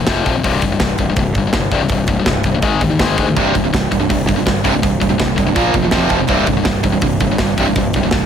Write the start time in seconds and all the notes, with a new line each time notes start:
0.07 F1 F2 C3 F3, kick, snare, open hi-hat
0.25 A#1 F2 C3 F3, kick, open hi-hat
0.36 F2 C3
0.43 C1 C2 G2 C3, kick, open hi-hat
0.62 C1 C2 G2, kick, open hi-hat
0.72 C2 G2
0.80 C1 C2 G2, kick, snare, open hi-hat
0.98 C1 C2 G2, kick, open hi-hat
1.10 C2 G2
1.16 C1 C2 G2, kick, open hi-hat
1.35 G1 C2 G2, kick, open hi-hat
1.47 C2 G2
1.53 G1 C2 G2, kick, snare, open hi-hat
1.71 C1 C2 G2 C3, kick, open hi-hat
1.83 C2 G2
1.89 C1 C2 G2, kick, open hi-hat
2.07 C1 C2 G2, kick, open hi-hat
2.19 C2 G2
2.26 C1 C2 G2, kick, snare, open hi-hat
2.43 C1 C2 G2, kick, open hi-hat
2.54 C2 G2
2.62 G#1 G#2 D#3 G#3, kick, open hi-hat
2.81 D#2 G#2 D#3, kick, open hi-hat
2.90 G#2 D#3
2.99 G#1 G#2 D#3 G#3, kick, snare, open hi-hat
3.18 D2 G#2 D#3 G#3, kick, open hi-hat
3.27 G#2 D#3
3.37 C1 C2 G2 C3, kick, open hi-hat
3.55 C1 C2 G2, kick, open hi-hat
3.64 C2 G2
3.73 C1 C2 G2, kick, snare, open hi-hat
3.91 C1 C2 G2, kick, open hi-hat
3.99 C2 G2
4.09 C1 C2 G2, kick, open hi-hat
4.27 G1 C2 G2, kick, open hi-hat
4.36 C2 G2
4.46 G1 C2 G2, kick, snare, open hi-hat
4.64 C1 C2 G2 C3, kick, open hi-hat
4.74 C2 G2
4.82 C1 C2 G2, kick, open hi-hat
5.00 C1 C2 G2, kick, open hi-hat
5.09 C2 G2
5.18 C1 C2 G2, kick, snare, open hi-hat
5.36 C1 C2 G2, kick, open hi-hat
5.46 C2 G2
5.55 A#1 A#2 F3 A#3, kick, open hi-hat
5.74 F1 A#2 F3, kick, open hi-hat
5.82 A#2 F3
5.91 F1 F2 C3 F3, kick, snare, open hi-hat
6.09 F1 F2 C3 F3, kick, open hi-hat
6.20 F2 C3
6.28 C1 C2 G2 C3, kick, open hi-hat
6.46 C1 C2 G2, kick, open hi-hat
6.53 C2 G2
6.57 C2 G2
6.65 C1 C2 G2, kick, snare, open hi-hat
6.83 C1 C2 G2, kick, open hi-hat
6.92 C2 G2
7.01 C1 C2 G2, kick, open hi-hat
7.20 G1 C2 G2, kick, open hi-hat
7.31 C2 G2
7.38 G1 C2 G2, kick, snare, open hi-hat
7.58 C1 C2 G2 C3, kick, open hi-hat
7.67 C2 G2
7.76 C1 C2 G2, kick, open hi-hat
7.93 C1 C2 G2, kick, open hi-hat
8.03 C2 G2
8.11 C1 C2 G2, kick, snare, open hi-hat